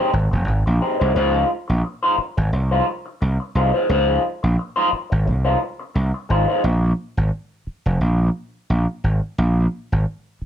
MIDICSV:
0, 0, Header, 1, 5, 480
1, 0, Start_track
1, 0, Tempo, 685714
1, 810, Time_signature, 4, 2, 24, 8
1, 7319, End_track
2, 0, Start_track
2, 0, Title_t, "Clean electric guitar"
2, 0, Program_c, 0, 27
2, 0, Note_on_c, 0, 56, 76
2, 0, Note_on_c, 0, 63, 80
2, 0, Note_on_c, 0, 67, 82
2, 0, Note_on_c, 0, 72, 91
2, 79, Note_off_c, 0, 56, 0
2, 84, Note_off_c, 0, 63, 0
2, 86, Note_off_c, 0, 67, 0
2, 89, Note_off_c, 0, 72, 0
2, 562, Note_on_c, 0, 56, 58
2, 567, Note_on_c, 0, 63, 66
2, 571, Note_on_c, 0, 67, 69
2, 574, Note_on_c, 0, 72, 67
2, 678, Note_off_c, 0, 56, 0
2, 681, Note_off_c, 0, 63, 0
2, 683, Note_off_c, 0, 67, 0
2, 684, Note_off_c, 0, 72, 0
2, 697, Note_on_c, 0, 72, 67
2, 701, Note_on_c, 0, 67, 58
2, 704, Note_on_c, 0, 63, 62
2, 709, Note_on_c, 0, 56, 52
2, 789, Note_off_c, 0, 72, 0
2, 791, Note_off_c, 0, 67, 0
2, 792, Note_off_c, 0, 63, 0
2, 795, Note_off_c, 0, 56, 0
2, 802, Note_on_c, 0, 56, 93
2, 808, Note_on_c, 0, 63, 90
2, 811, Note_on_c, 0, 65, 94
2, 814, Note_on_c, 0, 72, 101
2, 1029, Note_off_c, 0, 56, 0
2, 1032, Note_off_c, 0, 63, 0
2, 1033, Note_off_c, 0, 65, 0
2, 1034, Note_off_c, 0, 72, 0
2, 1418, Note_on_c, 0, 72, 83
2, 1422, Note_on_c, 0, 65, 80
2, 1426, Note_on_c, 0, 63, 77
2, 1430, Note_on_c, 0, 56, 74
2, 1515, Note_off_c, 0, 56, 0
2, 1520, Note_off_c, 0, 63, 0
2, 1522, Note_off_c, 0, 65, 0
2, 1525, Note_off_c, 0, 72, 0
2, 1899, Note_on_c, 0, 72, 84
2, 1904, Note_on_c, 0, 65, 80
2, 1908, Note_on_c, 0, 63, 67
2, 1912, Note_on_c, 0, 56, 67
2, 2002, Note_off_c, 0, 56, 0
2, 2004, Note_off_c, 0, 63, 0
2, 2008, Note_off_c, 0, 65, 0
2, 2009, Note_off_c, 0, 72, 0
2, 2487, Note_on_c, 0, 56, 66
2, 2493, Note_on_c, 0, 63, 59
2, 2497, Note_on_c, 0, 65, 65
2, 2499, Note_on_c, 0, 72, 76
2, 2600, Note_off_c, 0, 56, 0
2, 2603, Note_off_c, 0, 63, 0
2, 2605, Note_off_c, 0, 65, 0
2, 2606, Note_off_c, 0, 72, 0
2, 2617, Note_on_c, 0, 72, 62
2, 2623, Note_on_c, 0, 65, 53
2, 2627, Note_on_c, 0, 63, 55
2, 2630, Note_on_c, 0, 56, 53
2, 2708, Note_off_c, 0, 72, 0
2, 2711, Note_off_c, 0, 65, 0
2, 2713, Note_off_c, 0, 63, 0
2, 2714, Note_off_c, 0, 56, 0
2, 2723, Note_on_c, 0, 56, 81
2, 2728, Note_on_c, 0, 63, 83
2, 2734, Note_on_c, 0, 65, 83
2, 2736, Note_on_c, 0, 72, 92
2, 2948, Note_off_c, 0, 56, 0
2, 2951, Note_off_c, 0, 63, 0
2, 2954, Note_off_c, 0, 65, 0
2, 2955, Note_off_c, 0, 72, 0
2, 3332, Note_on_c, 0, 72, 96
2, 3337, Note_on_c, 0, 65, 101
2, 3340, Note_on_c, 0, 63, 96
2, 3345, Note_on_c, 0, 56, 80
2, 3430, Note_off_c, 0, 56, 0
2, 3434, Note_off_c, 0, 63, 0
2, 3438, Note_off_c, 0, 65, 0
2, 3440, Note_off_c, 0, 72, 0
2, 3812, Note_on_c, 0, 72, 82
2, 3816, Note_on_c, 0, 65, 76
2, 3821, Note_on_c, 0, 63, 76
2, 3823, Note_on_c, 0, 56, 75
2, 3910, Note_off_c, 0, 56, 0
2, 3914, Note_off_c, 0, 63, 0
2, 3917, Note_off_c, 0, 65, 0
2, 3919, Note_off_c, 0, 72, 0
2, 4403, Note_on_c, 0, 56, 62
2, 4410, Note_on_c, 0, 63, 65
2, 4413, Note_on_c, 0, 65, 76
2, 4418, Note_on_c, 0, 72, 74
2, 4518, Note_off_c, 0, 56, 0
2, 4521, Note_off_c, 0, 63, 0
2, 4522, Note_off_c, 0, 65, 0
2, 4525, Note_off_c, 0, 72, 0
2, 4536, Note_on_c, 0, 72, 67
2, 4542, Note_on_c, 0, 65, 64
2, 4546, Note_on_c, 0, 63, 64
2, 4548, Note_on_c, 0, 56, 53
2, 4627, Note_off_c, 0, 72, 0
2, 4631, Note_off_c, 0, 65, 0
2, 4632, Note_off_c, 0, 63, 0
2, 4633, Note_off_c, 0, 56, 0
2, 7319, End_track
3, 0, Start_track
3, 0, Title_t, "Slap bass"
3, 0, Program_c, 1, 36
3, 94, Note_on_c, 1, 32, 82
3, 200, Note_off_c, 1, 32, 0
3, 229, Note_on_c, 1, 29, 82
3, 312, Note_off_c, 1, 29, 0
3, 335, Note_on_c, 1, 32, 91
3, 441, Note_off_c, 1, 32, 0
3, 468, Note_on_c, 1, 34, 88
3, 552, Note_off_c, 1, 34, 0
3, 708, Note_on_c, 1, 36, 81
3, 791, Note_off_c, 1, 36, 0
3, 811, Note_on_c, 1, 37, 109
3, 1003, Note_off_c, 1, 37, 0
3, 1187, Note_on_c, 1, 34, 84
3, 1270, Note_off_c, 1, 34, 0
3, 1662, Note_on_c, 1, 32, 90
3, 1747, Note_off_c, 1, 32, 0
3, 1768, Note_on_c, 1, 36, 81
3, 1961, Note_off_c, 1, 36, 0
3, 2252, Note_on_c, 1, 36, 82
3, 2358, Note_off_c, 1, 36, 0
3, 2486, Note_on_c, 1, 36, 86
3, 2595, Note_off_c, 1, 36, 0
3, 2726, Note_on_c, 1, 37, 100
3, 2920, Note_off_c, 1, 37, 0
3, 3105, Note_on_c, 1, 34, 72
3, 3189, Note_off_c, 1, 34, 0
3, 3583, Note_on_c, 1, 32, 82
3, 3692, Note_on_c, 1, 36, 98
3, 3702, Note_off_c, 1, 32, 0
3, 3883, Note_off_c, 1, 36, 0
3, 4167, Note_on_c, 1, 36, 83
3, 4276, Note_off_c, 1, 36, 0
3, 4409, Note_on_c, 1, 32, 80
3, 4517, Note_off_c, 1, 32, 0
3, 4648, Note_on_c, 1, 34, 108
3, 4841, Note_off_c, 1, 34, 0
3, 5021, Note_on_c, 1, 32, 84
3, 5107, Note_off_c, 1, 32, 0
3, 5500, Note_on_c, 1, 29, 90
3, 5586, Note_off_c, 1, 29, 0
3, 5606, Note_on_c, 1, 34, 90
3, 5800, Note_off_c, 1, 34, 0
3, 6089, Note_on_c, 1, 34, 86
3, 6197, Note_off_c, 1, 34, 0
3, 6328, Note_on_c, 1, 32, 77
3, 6436, Note_off_c, 1, 32, 0
3, 6568, Note_on_c, 1, 34, 107
3, 6761, Note_off_c, 1, 34, 0
3, 6946, Note_on_c, 1, 32, 83
3, 7030, Note_off_c, 1, 32, 0
3, 7319, End_track
4, 0, Start_track
4, 0, Title_t, "Muted clean electric guitar strokes"
4, 88, Note_on_c, 9, 29, 38
4, 158, Note_off_c, 9, 29, 0
4, 220, Note_on_c, 9, 29, 41
4, 290, Note_off_c, 9, 29, 0
4, 326, Note_on_c, 9, 29, 44
4, 396, Note_off_c, 9, 29, 0
4, 462, Note_on_c, 9, 29, 46
4, 532, Note_off_c, 9, 29, 0
4, 1174, Note_on_c, 9, 29, 49
4, 1244, Note_off_c, 9, 29, 0
4, 1284, Note_on_c, 9, 29, 40
4, 1354, Note_off_c, 9, 29, 0
4, 1523, Note_on_c, 9, 29, 46
4, 1593, Note_off_c, 9, 29, 0
4, 1660, Note_on_c, 9, 29, 35
4, 1730, Note_off_c, 9, 29, 0
4, 1766, Note_on_c, 9, 29, 41
4, 1836, Note_off_c, 9, 29, 0
4, 2010, Note_on_c, 9, 29, 33
4, 2080, Note_off_c, 9, 29, 0
4, 2139, Note_on_c, 9, 29, 39
4, 2209, Note_off_c, 9, 29, 0
4, 2244, Note_on_c, 9, 29, 33
4, 2314, Note_off_c, 9, 29, 0
4, 2380, Note_on_c, 9, 29, 54
4, 2450, Note_off_c, 9, 29, 0
4, 3101, Note_on_c, 9, 29, 55
4, 3171, Note_off_c, 9, 29, 0
4, 3205, Note_on_c, 9, 29, 43
4, 3275, Note_off_c, 9, 29, 0
4, 3439, Note_on_c, 9, 29, 35
4, 3509, Note_off_c, 9, 29, 0
4, 3570, Note_on_c, 9, 29, 45
4, 3640, Note_off_c, 9, 29, 0
4, 3679, Note_on_c, 9, 29, 43
4, 3749, Note_off_c, 9, 29, 0
4, 3918, Note_on_c, 9, 29, 35
4, 3988, Note_off_c, 9, 29, 0
4, 4056, Note_on_c, 9, 29, 50
4, 4126, Note_off_c, 9, 29, 0
4, 4162, Note_on_c, 9, 29, 34
4, 4232, Note_off_c, 9, 29, 0
4, 4299, Note_on_c, 9, 29, 55
4, 4369, Note_off_c, 9, 29, 0
4, 7319, End_track
5, 0, Start_track
5, 0, Title_t, "Muted slap bass strokes"
5, 1527, Note_on_c, 9, 29, 47
5, 1597, Note_off_c, 9, 29, 0
5, 3449, Note_on_c, 9, 29, 42
5, 3519, Note_off_c, 9, 29, 0
5, 5369, Note_on_c, 9, 29, 43
5, 5439, Note_off_c, 9, 29, 0
5, 7291, Note_on_c, 9, 29, 45
5, 7319, Note_off_c, 9, 29, 0
5, 7319, End_track
0, 0, End_of_file